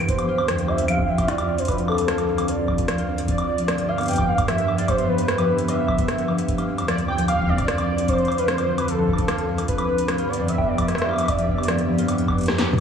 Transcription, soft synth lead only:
0, 0, Header, 1, 2, 480
1, 0, Start_track
1, 0, Tempo, 400000
1, 101, Time_signature, 4, 2, 24, 8
1, 15361, End_track
2, 0, Start_track
2, 0, Title_t, "Soft synth lead"
2, 0, Program_c, 0, 80
2, 107, Note_on_c, 0, 72, 96
2, 823, Note_on_c, 0, 76, 98
2, 841, Note_off_c, 0, 72, 0
2, 1062, Note_on_c, 0, 77, 98
2, 1080, Note_off_c, 0, 76, 0
2, 1303, Note_on_c, 0, 76, 92
2, 1321, Note_off_c, 0, 77, 0
2, 1543, Note_on_c, 0, 74, 101
2, 1561, Note_off_c, 0, 76, 0
2, 1903, Note_on_c, 0, 72, 89
2, 1921, Note_off_c, 0, 74, 0
2, 2017, Note_off_c, 0, 72, 0
2, 2024, Note_on_c, 0, 71, 94
2, 2132, Note_off_c, 0, 71, 0
2, 2264, Note_on_c, 0, 69, 100
2, 2983, Note_on_c, 0, 74, 100
2, 3001, Note_off_c, 0, 69, 0
2, 3702, Note_off_c, 0, 74, 0
2, 3942, Note_on_c, 0, 74, 115
2, 4660, Note_on_c, 0, 77, 104
2, 4678, Note_off_c, 0, 74, 0
2, 4894, Note_off_c, 0, 77, 0
2, 4902, Note_on_c, 0, 79, 104
2, 5138, Note_on_c, 0, 77, 108
2, 5156, Note_off_c, 0, 79, 0
2, 5372, Note_off_c, 0, 77, 0
2, 5379, Note_on_c, 0, 76, 107
2, 5715, Note_off_c, 0, 76, 0
2, 5740, Note_on_c, 0, 74, 96
2, 5861, Note_on_c, 0, 72, 107
2, 5879, Note_off_c, 0, 74, 0
2, 6099, Note_on_c, 0, 71, 107
2, 6117, Note_off_c, 0, 72, 0
2, 6822, Note_on_c, 0, 76, 95
2, 6840, Note_off_c, 0, 71, 0
2, 7541, Note_off_c, 0, 76, 0
2, 8264, Note_on_c, 0, 74, 105
2, 8371, Note_off_c, 0, 74, 0
2, 8501, Note_on_c, 0, 79, 108
2, 8724, Note_off_c, 0, 79, 0
2, 8742, Note_on_c, 0, 77, 105
2, 8984, Note_on_c, 0, 74, 109
2, 9002, Note_off_c, 0, 77, 0
2, 9702, Note_on_c, 0, 72, 104
2, 9720, Note_off_c, 0, 74, 0
2, 10060, Note_on_c, 0, 71, 91
2, 10078, Note_off_c, 0, 72, 0
2, 10176, Note_off_c, 0, 71, 0
2, 10183, Note_on_c, 0, 72, 100
2, 10542, Note_on_c, 0, 71, 96
2, 10560, Note_off_c, 0, 72, 0
2, 10660, Note_on_c, 0, 69, 96
2, 10678, Note_off_c, 0, 71, 0
2, 11381, Note_off_c, 0, 69, 0
2, 11619, Note_on_c, 0, 71, 106
2, 12342, Note_on_c, 0, 74, 95
2, 12360, Note_off_c, 0, 71, 0
2, 12580, Note_on_c, 0, 76, 101
2, 12598, Note_off_c, 0, 74, 0
2, 12821, Note_on_c, 0, 74, 94
2, 12839, Note_off_c, 0, 76, 0
2, 13064, Note_on_c, 0, 76, 99
2, 13082, Note_off_c, 0, 74, 0
2, 13540, Note_on_c, 0, 74, 96
2, 13558, Note_off_c, 0, 76, 0
2, 14981, Note_off_c, 0, 74, 0
2, 15361, End_track
0, 0, End_of_file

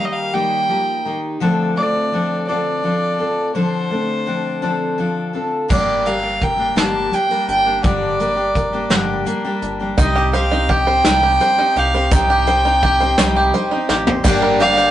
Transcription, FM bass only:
0, 0, Header, 1, 2, 480
1, 0, Start_track
1, 0, Key_signature, -2, "minor"
1, 0, Tempo, 712589
1, 954, Time_signature, 6, 3, 24, 8
1, 10043, End_track
2, 0, Start_track
2, 0, Title_t, "FM bass"
2, 0, Program_c, 0, 39
2, 3843, Note_on_c, 0, 31, 104
2, 4537, Note_off_c, 0, 31, 0
2, 4563, Note_on_c, 0, 31, 94
2, 4783, Note_off_c, 0, 31, 0
2, 5043, Note_on_c, 0, 31, 77
2, 5264, Note_off_c, 0, 31, 0
2, 5283, Note_on_c, 0, 31, 98
2, 5977, Note_off_c, 0, 31, 0
2, 5997, Note_on_c, 0, 31, 95
2, 6220, Note_off_c, 0, 31, 0
2, 6484, Note_on_c, 0, 31, 78
2, 6704, Note_off_c, 0, 31, 0
2, 6722, Note_on_c, 0, 36, 103
2, 7416, Note_off_c, 0, 36, 0
2, 7445, Note_on_c, 0, 36, 107
2, 7664, Note_off_c, 0, 36, 0
2, 7923, Note_on_c, 0, 36, 86
2, 8142, Note_off_c, 0, 36, 0
2, 8161, Note_on_c, 0, 36, 107
2, 8853, Note_off_c, 0, 36, 0
2, 8882, Note_on_c, 0, 36, 100
2, 9100, Note_off_c, 0, 36, 0
2, 9359, Note_on_c, 0, 33, 83
2, 9578, Note_off_c, 0, 33, 0
2, 9598, Note_on_c, 0, 31, 117
2, 10043, Note_off_c, 0, 31, 0
2, 10043, End_track
0, 0, End_of_file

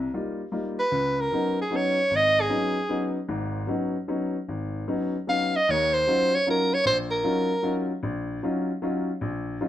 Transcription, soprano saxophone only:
0, 0, Header, 1, 2, 480
1, 0, Start_track
1, 0, Tempo, 395517
1, 1113, Time_signature, 3, 2, 24, 8
1, 11751, End_track
2, 0, Start_track
2, 0, Title_t, "Soprano saxophone"
2, 0, Program_c, 0, 64
2, 964, Note_on_c, 0, 71, 74
2, 1463, Note_on_c, 0, 70, 72
2, 1482, Note_off_c, 0, 71, 0
2, 1923, Note_off_c, 0, 70, 0
2, 1963, Note_on_c, 0, 68, 69
2, 2139, Note_on_c, 0, 73, 85
2, 2158, Note_off_c, 0, 68, 0
2, 2620, Note_on_c, 0, 75, 97
2, 2638, Note_off_c, 0, 73, 0
2, 2927, Note_on_c, 0, 68, 74
2, 2945, Note_off_c, 0, 75, 0
2, 3856, Note_off_c, 0, 68, 0
2, 6425, Note_on_c, 0, 77, 85
2, 6750, Note_on_c, 0, 75, 87
2, 6768, Note_off_c, 0, 77, 0
2, 6927, Note_on_c, 0, 73, 85
2, 6946, Note_off_c, 0, 75, 0
2, 7207, Note_on_c, 0, 72, 83
2, 7226, Note_off_c, 0, 73, 0
2, 7706, Note_on_c, 0, 73, 79
2, 7724, Note_off_c, 0, 72, 0
2, 7856, Note_off_c, 0, 73, 0
2, 7891, Note_on_c, 0, 70, 72
2, 8184, Note_on_c, 0, 73, 79
2, 8202, Note_off_c, 0, 70, 0
2, 8327, Note_off_c, 0, 73, 0
2, 8334, Note_on_c, 0, 72, 81
2, 8468, Note_off_c, 0, 72, 0
2, 8629, Note_on_c, 0, 70, 69
2, 9535, Note_off_c, 0, 70, 0
2, 11751, End_track
0, 0, End_of_file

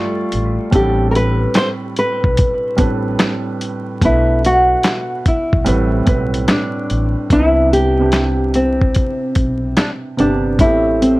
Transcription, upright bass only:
0, 0, Header, 1, 2, 480
1, 0, Start_track
1, 0, Tempo, 821918
1, 425, Time_signature, 4, 2, 24, 8
1, 6540, End_track
2, 0, Start_track
2, 0, Title_t, "Upright bass"
2, 0, Program_c, 0, 32
2, 191, Note_on_c, 0, 33, 88
2, 327, Note_off_c, 0, 33, 0
2, 427, Note_on_c, 0, 33, 117
2, 844, Note_off_c, 0, 33, 0
2, 1311, Note_on_c, 0, 35, 94
2, 1379, Note_off_c, 0, 35, 0
2, 1630, Note_on_c, 0, 33, 97
2, 1837, Note_off_c, 0, 33, 0
2, 2348, Note_on_c, 0, 35, 108
2, 2765, Note_off_c, 0, 35, 0
2, 3232, Note_on_c, 0, 35, 81
2, 3299, Note_off_c, 0, 35, 0
2, 3312, Note_on_c, 0, 33, 99
2, 3518, Note_off_c, 0, 33, 0
2, 3550, Note_on_c, 0, 35, 90
2, 3757, Note_off_c, 0, 35, 0
2, 4033, Note_on_c, 0, 33, 83
2, 4167, Note_off_c, 0, 33, 0
2, 4268, Note_on_c, 0, 36, 106
2, 5203, Note_off_c, 0, 36, 0
2, 5469, Note_on_c, 0, 35, 88
2, 5677, Note_off_c, 0, 35, 0
2, 5952, Note_on_c, 0, 31, 72
2, 6187, Note_off_c, 0, 31, 0
2, 6187, Note_on_c, 0, 33, 109
2, 6540, Note_off_c, 0, 33, 0
2, 6540, End_track
0, 0, End_of_file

